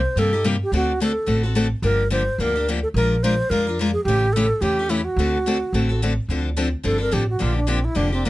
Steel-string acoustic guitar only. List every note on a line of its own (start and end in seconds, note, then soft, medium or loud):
0.17 0.32 C3 medium
0.17 0.32 G3 medium
0.17 0.33 A#3 medium
0.17 0.33 D#4 medium
0.17 0.31 G4 medium
0.33 0.43 A#3 soft
0.33 0.44 D#4 medium
0.33 0.44 G4 medium
0.44 0.55 C3 medium
0.44 0.55 G3 medium
0.44 0.55 A#3 medium
0.44 0.55 D#4 medium
0.44 0.55 G4 medium
0.72 0.91 D3 medium
0.72 0.91 A3 medium
0.72 0.92 C4 medium
0.72 0.92 F#4 medium
0.72 0.92 A4 medium
1.00 1.11 D3 medium
1.00 1.11 A3 medium
1.00 1.11 C4 medium
1.00 1.11 F#4 medium
1.00 1.11 A4 medium
1.26 1.43 D3 medium
1.26 1.43 A3 medium
1.26 1.43 C4 medium
1.26 1.43 F#4 medium
1.26 1.42 A4 medium
1.43 1.54 C4 soft
1.43 1.55 F#4 soft
1.43 1.55 A4 medium
1.55 1.66 D3 medium
1.55 1.66 A3 medium
1.55 1.66 C4 medium
1.55 1.67 F#4 medium
1.55 1.66 A4 medium
1.83 2.02 D3 medium
1.83 2.02 F3 medium
1.83 2.02 A#3 medium
1.83 2.02 D4 medium
1.83 2.02 G4 medium
2.10 2.21 D3 medium
2.10 2.22 F3 medium
2.10 2.21 A#3 medium
2.10 2.22 D4 medium
2.10 2.22 G4 medium
2.40 2.55 D3 medium
2.40 2.55 F3 medium
2.40 2.55 A#3 medium
2.40 2.55 D4 medium
2.40 2.54 G4 medium
2.56 2.67 A#3 soft
2.56 2.68 D4 medium
2.56 2.67 G4 medium
2.68 2.78 D3 medium
2.68 2.78 F3 medium
2.68 2.78 A#3 medium
2.68 2.79 D4 medium
2.68 2.79 G4 medium
2.96 3.14 F3 medium
2.96 3.14 G#3 medium
2.96 3.15 D4 medium
2.96 3.15 F4 medium
2.96 3.15 A#4 medium
3.24 3.34 F3 medium
3.24 3.34 G#3 medium
3.24 3.34 D4 medium
3.24 3.34 F4 medium
3.24 3.34 A#4 medium
3.51 3.66 F3 medium
3.51 3.66 G#3 medium
3.51 3.66 D4 medium
3.51 3.67 F4 medium
3.51 3.66 A#4 medium
3.67 3.79 D4 soft
3.67 3.79 F4 medium
3.67 3.78 A#4 medium
3.79 3.89 F3 medium
3.79 3.90 G#3 medium
3.79 3.90 D4 medium
3.79 3.90 F4 medium
3.79 3.90 A#4 medium
4.08 4.26 C#3 medium
4.08 4.26 E3 medium
4.08 4.26 A3 medium
4.08 4.26 C#4 medium
4.08 4.26 G4 medium
4.36 4.45 C#3 medium
4.36 4.46 E3 medium
4.36 4.46 A3 medium
4.36 4.46 C#4 medium
4.36 4.46 G4 medium
4.62 4.77 C#3 medium
4.62 4.77 E3 medium
4.62 4.77 A3 medium
4.62 4.77 C#4 medium
4.62 4.77 G4 medium
4.79 4.88 A3 soft
4.79 4.89 C#4 soft
4.79 4.90 G4 medium
4.89 5.00 C#3 medium
4.89 5.00 E3 medium
4.89 5.00 A3 medium
4.89 5.00 C#4 medium
4.89 5.01 G4 medium
5.19 5.37 D3 medium
5.19 5.37 A3 medium
5.19 5.37 C4 medium
5.19 5.37 F#4 medium
5.19 5.37 A4 medium
5.46 5.56 D3 medium
5.46 5.57 A3 medium
5.46 5.57 C4 medium
5.46 5.57 F#4 medium
5.46 5.57 A4 medium
5.74 5.89 D3 medium
5.74 5.89 A3 medium
5.74 5.89 C4 medium
5.74 5.89 F#4 medium
5.74 5.88 A4 medium
5.89 6.02 C4 soft
5.89 6.01 F#4 soft
5.89 6.01 A4 medium
6.02 6.12 D3 medium
6.02 6.13 A3 medium
6.02 6.12 C4 medium
6.02 6.12 F#4 medium
6.02 6.13 A4 medium
6.30 6.48 D3 medium
6.30 6.48 F3 medium
6.30 6.48 C4 medium
6.30 6.49 D4 medium
6.30 6.49 A4 medium
6.57 6.67 D3 medium
6.57 6.67 F3 medium
6.57 6.68 C4 medium
6.57 6.67 D4 medium
6.57 6.67 A4 medium
6.83 6.99 D3 medium
6.83 6.99 F3 medium
6.83 7.00 C4 medium
6.83 6.98 D4 medium
6.83 6.97 A4 medium
6.98 7.11 C4 soft
6.98 7.11 D4 soft
6.98 7.11 A4 medium
7.11 7.22 D3 medium
7.11 7.23 F3 medium
7.11 7.23 C4 medium
7.11 7.23 D4 medium
7.11 7.23 A4 medium
7.39 7.58 D3 medium
7.39 7.58 F3 medium
7.39 7.59 A#3 medium
7.39 7.59 D4 medium
7.39 7.59 G4 medium
7.67 7.78 D3 medium
7.67 7.78 F3 medium
7.67 7.78 A#3 medium
7.67 7.79 D4 medium
7.67 7.78 G4 medium
7.95 8.11 D3 medium
7.95 8.11 F3 medium
7.95 8.11 A#3 medium
7.95 8.11 D4 medium
7.95 8.11 G4 medium
8.12 8.25 A#3 soft
8.12 8.25 D4 soft
8.12 8.24 G4 medium
8.25 8.30 D3 medium
8.25 8.30 F3 medium
8.25 8.30 A#3 medium
8.25 8.30 G4 medium